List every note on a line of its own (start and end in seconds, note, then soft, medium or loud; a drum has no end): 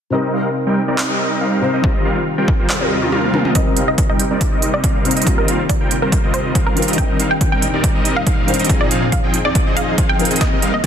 0.10 1.59 C3 medium
0.10 0.31 G3 medium
0.10 1.60 C4 medium
0.10 0.31 C4 medium
0.10 0.31 D#4 medium
0.10 1.60 D#4 medium
0.10 0.31 A#4 medium
0.10 1.61 A#4 medium
0.10 0.31 D#5 loud
0.34 0.47 G3 medium
0.34 0.47 C4 medium
0.34 0.47 D#4 medium
0.34 0.47 A#4 medium
0.34 0.47 F5 medium
0.67 0.79 G3 medium
0.67 0.79 C4 medium
0.67 0.79 D#4 medium
0.67 0.79 A#4 medium
0.67 0.79 G5 loud
0.88 1.06 G3 medium
0.88 1.06 C4 medium
0.88 1.06 D#4 medium
0.88 1.06 A#4 medium
0.88 1.06 D5 medium
0.98 clap loud
1.09 1.39 G3 medium
1.09 1.39 C4 medium
1.09 1.39 D#4 medium
1.09 1.39 A#4 medium
1.09 1.39 D#5 medium
1.41 1.71 G3 medium
1.41 1.71 C4 medium
1.41 1.71 D#4 medium
1.41 1.71 A#4 medium
1.41 1.71 F5 medium
1.61 1.81 C3 medium
1.61 1.81 C4 medium
1.61 1.82 D#4 medium
1.61 1.82 C5 loud
1.74 1.81 G3 medium
1.74 1.81 C4 medium
1.74 1.81 D#4 medium
1.74 1.81 A#4 medium
1.74 1.81 D#5 medium
1.82 3.54 D#2 medium
1.82 3.54 C3 medium
1.82 3.30 D#3 medium
1.82 2.03 G3 medium
1.82 3.31 C4 medium
1.82 2.03 C4 medium
1.82 2.03 F4 medium
1.82 3.54 F4 medium
1.82 3.32 F4 medium
1.82 3.54 G4 medium
1.82 3.32 G4 medium
1.82 2.03 A#4 medium
1.82 2.03 D#5 loud
1.82 kick loud
2.05 2.19 G3 medium
2.05 2.19 C4 medium
2.05 2.19 F4 medium
2.05 2.19 A#4 medium
2.05 2.19 F5 medium
2.38 2.50 G3 medium
2.38 2.50 C4 medium
2.38 2.50 F4 medium
2.38 2.50 A#4 medium
2.38 2.50 G5 medium
2.48 kick loud
2.59 2.77 G3 medium
2.59 2.77 C4 medium
2.59 2.77 F4 medium
2.59 2.77 A#4 medium
2.59 2.77 C5 medium
2.70 clap loud
2.70 high tom medium
2.81 3.10 G3 medium
2.81 3.10 C4 medium
2.81 3.10 F4 medium
2.81 3.10 A#4 medium
2.81 3.10 D#5 medium
2.81 high tom medium
3.02 mid tom medium
3.12 3.42 G3 medium
3.12 3.42 C4 medium
3.12 3.42 F4 medium
3.12 3.42 A#4 medium
3.12 3.42 F5 medium
3.12 mid tom medium
3.33 3.52 D#3 medium
3.33 3.53 C4 medium
3.33 3.53 F4 medium
3.33 3.53 A#4 medium
3.33 mid tom medium
3.45 3.53 G3 medium
3.45 3.53 C4 medium
3.45 3.53 F4 medium
3.45 3.53 A#4 medium
3.45 3.53 D#5 medium
3.45 mid tom medium
3.53 5.02 C3 medium
3.53 6.95 C3 medium
3.53 3.74 G3 medium
3.53 5.25 A#3 medium
3.53 5.03 C4 medium
3.53 3.74 C4 medium
3.53 3.74 D#4 medium
3.53 5.25 D#4 medium
3.53 5.03 D#4 medium
3.53 3.74 A#4 medium
3.53 5.04 A#4 medium
3.53 3.74 D#5 medium
3.53 3.75 D#5 medium
3.53 kick medium
3.53 closed hi-hat medium
3.77 3.90 G3 medium
3.77 3.90 C4 medium
3.77 3.90 D#4 medium
3.77 3.90 A#4 medium
3.77 3.90 F5 medium
3.77 closed hi-hat medium
3.88 4.00 D#5 medium
3.98 kick medium
3.98 closed hi-hat medium
4.09 4.22 G3 medium
4.09 4.22 C4 medium
4.09 4.22 D#4 medium
4.09 4.22 A#4 medium
4.09 4.22 D#5 medium
4.09 4.22 G5 loud
4.20 closed hi-hat medium
4.31 4.49 G3 medium
4.31 4.49 C4 medium
4.31 4.49 D#4 medium
4.31 4.49 A#4 medium
4.31 4.49 D5 medium
4.41 kick loud
4.41 closed hi-hat medium
4.52 4.81 G3 medium
4.52 4.81 C4 medium
4.52 4.81 D#4 medium
4.52 4.81 A#4 medium
4.52 4.81 D#5 medium
4.62 closed hi-hat medium
4.74 4.93 D5 medium
4.84 5.14 G3 medium
4.84 5.14 C4 medium
4.84 5.14 D#4 medium
4.84 5.14 A#4 medium
4.84 5.14 F5 medium
4.84 kick loud
4.84 closed hi-hat medium
5.04 5.24 C3 medium
5.04 5.24 C4 medium
5.04 5.24 D#4 medium
5.04 5.25 C5 medium
5.04 closed hi-hat soft
5.11 closed hi-hat medium
5.16 5.24 G3 medium
5.16 5.24 C4 medium
5.16 5.24 D#4 medium
5.16 5.24 A#4 medium
5.16 5.24 D#5 medium
5.16 closed hi-hat soft
5.22 6.73 D#3 medium
5.22 closed hi-hat medium
5.26 6.96 D#2 medium
5.26 5.46 G3 medium
5.26 6.96 G3 medium
5.26 6.74 C4 medium
5.26 5.46 C4 medium
5.26 5.46 F4 medium
5.26 6.96 F4 medium
5.26 6.75 F4 medium
5.26 6.75 G4 medium
5.26 5.46 A#4 medium
5.26 5.46 D#5 medium
5.26 kick medium
5.26 closed hi-hat medium
5.38 5.57 A#4 medium
5.48 5.61 G3 medium
5.48 5.61 C4 medium
5.48 5.61 F4 medium
5.48 5.61 A#4 medium
5.48 5.61 F5 medium
5.48 closed hi-hat medium
5.69 5.89 D5 medium
5.69 kick medium
5.69 closed hi-hat medium
5.81 5.93 G3 medium
5.81 5.93 C4 medium
5.81 5.93 F4 medium
5.81 5.93 A#4 medium
5.81 5.93 G5 loud
5.91 closed hi-hat medium
6.02 6.20 G3 medium
6.02 6.20 C4 medium
6.02 6.20 F4 medium
6.02 6.20 A#4 medium
6.02 6.21 A#4 medium
6.02 6.20 C5 medium
6.12 kick loud
6.12 closed hi-hat medium
6.24 6.53 G3 medium
6.24 6.53 C4 medium
6.24 6.53 F4 medium
6.24 6.53 A#4 medium
6.24 6.53 D#5 medium
6.34 6.53 C5 medium
6.34 closed hi-hat medium
6.55 6.85 G3 medium
6.55 6.85 C4 medium
6.55 6.85 F4 medium
6.55 6.85 A#4 medium
6.55 6.85 F5 medium
6.55 kick loud
6.55 closed hi-hat medium
6.66 6.86 A#4 medium
6.76 6.95 D#3 medium
6.76 6.96 C4 medium
6.76 6.96 F4 medium
6.76 6.96 A#4 loud
6.76 closed hi-hat soft
6.82 closed hi-hat medium
6.88 6.96 G3 medium
6.88 6.96 C4 medium
6.88 6.96 F4 medium
6.88 6.96 A#4 medium
6.88 6.96 D#5 loud
6.88 closed hi-hat soft
6.93 8.45 D#3 medium
6.93 closed hi-hat medium
6.97 8.68 D#2 medium
6.97 8.68 A#2 medium
6.97 7.17 G3 medium
6.97 8.45 C4 medium
6.97 7.17 C4 medium
6.97 8.68 D4 medium
6.97 8.46 D4 medium
6.97 7.17 D#4 medium
6.97 7.17 A#4 medium
6.97 7.17 D#5 medium
6.97 7.17 G5 loud
6.97 kick medium
6.97 closed hi-hat medium
7.19 7.33 G3 medium
7.19 7.33 C4 medium
7.19 7.33 D#4 medium
7.19 7.33 A#4 medium
7.19 7.33 F5 medium
7.19 closed hi-hat medium
7.31 7.43 G5 medium
7.41 kick loud
7.41 closed hi-hat medium
7.52 7.65 G3 medium
7.52 7.65 C4 medium
7.52 7.65 D#4 medium
7.52 7.65 A#4 medium
7.52 7.65 G5 medium
7.62 closed hi-hat medium
7.74 7.92 G3 medium
7.74 7.92 C4 medium
7.74 7.92 D#4 medium
7.74 7.92 A#4 medium
7.74 7.92 D5 medium
7.84 kick loud
7.84 closed hi-hat medium
7.95 8.24 G3 medium
7.95 8.24 C4 medium
7.95 8.24 D#4 medium
7.95 8.24 A#4 medium
7.95 8.24 D#5 medium
8.05 closed hi-hat medium
8.16 8.36 F5 medium
8.27 8.57 G3 medium
8.27 8.57 C4 medium
8.27 8.57 D#4 medium
8.27 8.57 A#4 medium
8.27 8.57 F5 medium
8.27 kick loud
8.27 closed hi-hat medium
8.47 8.67 D#3 medium
8.47 8.67 C4 medium
8.47 8.67 D4 medium
8.47 8.68 C5 loud
8.47 closed hi-hat soft
8.54 closed hi-hat medium
8.59 8.67 G3 medium
8.59 8.67 C4 medium
8.59 8.67 D#4 medium
8.59 8.67 A#4 medium
8.59 8.67 D#5 medium
8.59 closed hi-hat soft
8.64 10.16 F3 medium
8.64 closed hi-hat medium
8.69 10.39 F2 medium
8.69 10.39 D#3 medium
8.69 8.88 F3 medium
8.69 10.17 C4 medium
8.69 8.88 C4 medium
8.69 8.88 D#4 medium
8.69 10.17 D#4 medium
8.69 10.39 G#4 medium
8.69 8.89 G#4 medium
8.69 10.18 G#4 medium
8.69 8.88 D#5 medium
8.69 kick medium
8.69 closed hi-hat medium
8.81 9.00 D5 medium
8.91 9.04 F3 medium
8.91 9.04 C4 medium
8.91 9.04 D#4 medium
8.91 9.04 G#4 medium
8.91 9.04 F5 medium
8.91 closed hi-hat medium
9.12 9.32 F5 medium
9.12 kick medium
9.12 closed hi-hat medium
9.24 9.36 F3 medium
9.24 9.36 C4 medium
9.24 9.36 D#4 medium
9.24 9.36 G#4 medium
9.24 9.36 G5 medium
9.34 closed hi-hat medium
9.45 9.63 F3 medium
9.45 9.63 C4 medium
9.45 9.63 D#4 medium
9.45 9.63 G#4 medium
9.45 9.64 D5 medium
9.45 9.63 D5 medium
9.55 kick loud
9.55 closed hi-hat medium
9.67 9.96 F3 medium
9.67 9.96 C4 medium
9.67 9.96 D#4 medium
9.67 9.96 G#4 medium
9.67 9.96 D#5 medium
9.77 9.96 F5 loud
9.77 closed hi-hat medium
9.98 10.28 F3 medium
9.98 10.28 C4 medium
9.98 10.28 D#4 medium
9.98 10.28 G#4 medium
9.98 10.28 F5 medium
9.98 kick loud
9.98 closed hi-hat medium
10.09 10.29 G5 loud
10.18 10.38 F3 medium
10.18 10.38 C4 medium
10.18 10.39 D#4 medium
10.18 10.39 A#4 medium
10.18 closed hi-hat soft
10.25 closed hi-hat medium
10.31 10.38 F3 medium
10.31 10.38 C4 medium
10.31 10.38 D#4 medium
10.31 10.38 G#4 medium
10.31 10.39 D#5 medium
10.31 closed hi-hat soft
10.36 closed hi-hat medium
10.41 10.86 C3 medium
10.41 10.60 G3 medium
10.41 10.86 A#3 medium
10.41 10.46 A#3 loud
10.41 10.60 C4 medium
10.41 10.86 D#4 medium
10.41 10.60 D#4 medium
10.41 10.60 A#4 medium
10.41 10.60 D#5 loud
10.41 kick loud
10.41 snare soft
10.41 closed hi-hat medium
10.41 riser medium
10.52 10.59 C4 medium
10.62 10.76 G3 medium
10.62 10.76 C4 medium
10.62 10.76 D#4 medium
10.62 10.67 G4 medium
10.62 10.76 A#4 medium
10.62 10.76 F5 medium
10.62 closed hi-hat medium
10.74 10.76 A#3 medium
10.74 10.86 D#5 medium